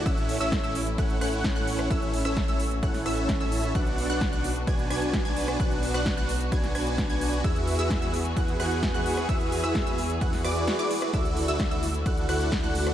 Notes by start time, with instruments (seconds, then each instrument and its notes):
Already playing: string section A3
0.06 detuned saw bass A1, supersaw synth C#4 E4 A4 C#5 E5, string section C#4 E4, synth pluck E6, kick, closed hi-hat
0.18 closed hi-hat
0.29 open hi-hat
0.41 detuned saw bass A1, supersaw synth C#4 E4 A4 C#5 E5, synth pluck E6, closed hi-hat
0.52 kick, snare, closed hi-hat
0.64 detuned saw bass A1, supersaw synth C#4 E4 A4 C#5 E5, synth pluck E6, closed hi-hat
0.75 open hi-hat
0.87 closed hi-hat
0.98 supersaw synth C#4 E4 A4 C#5 F#5, synth pluck F#6, kick, closed hi-hat
1.10 closed hi-hat
1.21 detuned saw bass A1, supersaw synth C#4 E4 A4 C#5 F#5, synth pluck F#6, cross-stick, open hi-hat
1.33 closed hi-hat
1.44 kick, snare, closed hi-hat
1.56 detuned saw bass A1, supersaw synth C#4 E4 A4 C#5 F#5, synth pluck F#6
1.67 open hi-hat
1.79 cross-stick
1.90 detuned saw bass A1, supersaw synth C#4 E4 A4 C#5 E5, string section F#4, synth pluck E6, kick, closed hi-hat
2.02 closed hi-hat
2.14 open hi-hat
2.25 detuned saw bass A1, supersaw synth C#4 E4 A4 C#5 E5, synth pluck E6, cross-stick, closed hi-hat
2.37 kick, snare, closed hi-hat
2.48 detuned saw bass A1, supersaw synth C#4 E4 A4 C#5 E5, synth pluck E6, closed hi-hat
2.60 open hi-hat
2.71 closed hi-hat
2.83 detuned saw bass A1, supersaw synth C#4 E4 A4 C#5 F#5, synth pluck F#6, kick, closed hi-hat
2.94 snare, open hi-hat
3.06 detuned saw bass A1, supersaw synth C#4 E4 A4 C#5 E5, synth pluck E6, cross-stick, open hi-hat
3.17 closed hi-hat
3.29 kick, snare, closed hi-hat
3.40 detuned saw bass A1, supersaw synth C#4 E4 A4 C#5 E5, synth pluck E6
3.52 open hi-hat
3.64 closed hi-hat
3.75 string section B3 D4, supersaw synth D4 F#4 B4 D5 F#5, synth pluck F#6, kick, closed hi-hat
3.87 closed hi-hat
3.98 open hi-hat
4.10 detuned saw bass B1, supersaw synth D4 F#4 B4 D5 F#5, synth pluck F#6, closed hi-hat
4.21 kick, snare, closed hi-hat
4.33 detuned saw bass B1, supersaw synth D4 F#4 B4 D5 F#5, synth pluck F#6, closed hi-hat
4.44 open hi-hat
4.56 closed hi-hat
4.67 supersaw synth D4 F#4 B4 D5 G#5, synth pluck G#6, kick, closed hi-hat
4.79 closed hi-hat
4.90 detuned saw bass B1, supersaw synth D4 F#4 B4 D5 G#5, synth pluck G#6, cross-stick, open hi-hat
5.02 closed hi-hat
5.14 kick, snare, closed hi-hat
5.25 detuned saw bass B1, supersaw synth D4 F#4 B4 D5 G#5, synth pluck G#6
5.37 open hi-hat
5.48 cross-stick, closed hi-hat
5.60 detuned saw bass B1, supersaw synth D4 F#4 B4 D5 F#5, synth pluck F#6, kick, closed hi-hat
5.71 closed hi-hat
5.83 open hi-hat
5.94 detuned saw bass B1, supersaw synth D4 F#4 B4 D5 F#5, synth pluck F#6, cross-stick, closed hi-hat
6.06 kick, snare, closed hi-hat
6.17 detuned saw bass B1, supersaw synth D4 F#4 B4 D5 F#5, synth pluck F#6, closed hi-hat
6.29 open hi-hat
6.41 closed hi-hat
6.52 supersaw synth D4 F#4 B4 D5 G#5, synth pluck G#6, kick, closed hi-hat
6.64 snare, closed hi-hat
6.75 detuned saw bass B1, supersaw synth D4 F#4 B4 D5 G#5, synth pluck G#6, cross-stick, open hi-hat
6.87 closed hi-hat
6.98 kick, snare, closed hi-hat
7.10 detuned saw bass B1, supersaw synth D4 F#4 B4 D5 G#5, synth pluck G#6
7.21 open hi-hat
7.33 closed hi-hat
7.44 string section E3 G#4, supersaw synth E4 F#4 G#4 B4 E5, synth pluck E6, kick, closed hi-hat
7.56 closed hi-hat
7.67 open hi-hat
7.79 detuned saw bass E2, supersaw synth E4 F#4 G#4 B4 E5, synth pluck E6, closed hi-hat
7.90 kick, snare, closed hi-hat
8.02 detuned saw bass E2, supersaw synth E4 F#4 G#4 B4 E5, synth pluck E6, closed hi-hat
8.14 open hi-hat
8.25 closed hi-hat
8.37 detuned saw bass E2, supersaw synth E4 F#4 G#4 B4 F#5, synth pluck F#6, kick, closed hi-hat
8.48 closed hi-hat
8.60 detuned saw bass E2, supersaw synth E4 F#4 G#4 B4 F#5, synth pluck F#6, cross-stick, open hi-hat
8.71 closed hi-hat
8.83 kick, snare, closed hi-hat
8.94 detuned saw bass E2, supersaw synth E4 F#4 G#4 B4 F#5, synth pluck F#6
9.06 open hi-hat
9.17 cross-stick, closed hi-hat
9.29 detuned saw bass E2, supersaw synth E4 F#4 G#4 B4 E5, synth pluck E6, kick, closed hi-hat
9.41 closed hi-hat
9.52 open hi-hat
9.64 detuned saw bass E2, supersaw synth E4 F#4 G#4 B4 E5, synth pluck E6, cross-stick, closed hi-hat
9.75 kick, snare, closed hi-hat
9.87 detuned saw bass E2, supersaw synth E4 F#4 G#4 B4 E5, synth pluck E6, closed hi-hat
9.98 open hi-hat
10.10 closed hi-hat
10.21 detuned saw bass E2, supersaw synth E4 F#4 G#4 B4 F#5, synth pluck F#6, kick, closed hi-hat
10.33 snare, open hi-hat
10.44 detuned saw bass E2, supersaw synth E4 F#4 G#4 B4 D5, synth pluck D6, cross-stick, open hi-hat
10.56 closed hi-hat
10.68 snare, closed hi-hat
10.79 supersaw synth E4 F#4 G#4 B4 D5, synth pluck D6, closed hi-hat
10.91 open hi-hat
11.02 cross-stick, closed hi-hat
11.14 detuned saw bass D2, string section D3 A3 E4, supersaw synth E4 A4 D5 E5, synth pluck E6, kick, closed hi-hat
11.25 closed hi-hat
11.37 open hi-hat
11.48 detuned saw bass D2, supersaw synth E4 F#4 A4 D5 E5, synth pluck E6, closed hi-hat
11.60 kick, snare, closed hi-hat
11.71 detuned saw bass D2, supersaw synth E4 F#4 A4 D5 E5, synth pluck E6, closed hi-hat
11.83 open hi-hat
11.94 closed hi-hat
12.06 detuned saw bass D2, supersaw synth E4 F#4 A4 D5 F#5, synth pluck F#6, kick, closed hi-hat
12.17 closed hi-hat
12.29 detuned saw bass D2, supersaw synth E4 F#4 A4 D5 F#5, synth pluck F#6, cross-stick, open hi-hat
12.40 closed hi-hat
12.52 kick, snare, closed hi-hat
12.63 detuned saw bass D2, supersaw synth E4 F#4 A4 D5 F#5, synth pluck F#6
12.75 open hi-hat
12.87 cross-stick, closed hi-hat